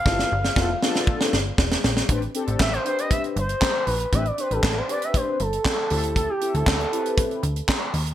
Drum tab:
HH |----------------|xxxx-xxxxxxx--ox|xxxx--xxx-xx--ox|x-xx-xxxxxxx--ox|
CP |----------------|----x-------x---|----x-------x---|----x-------x---|
SD |oo-oo-oo-oo-oooo|----o-------o---|----o-------o---|----o-------o---|
BD |o---o---o---o---|o---o---o---o---|o---o---o---o---|o---o---o---o---|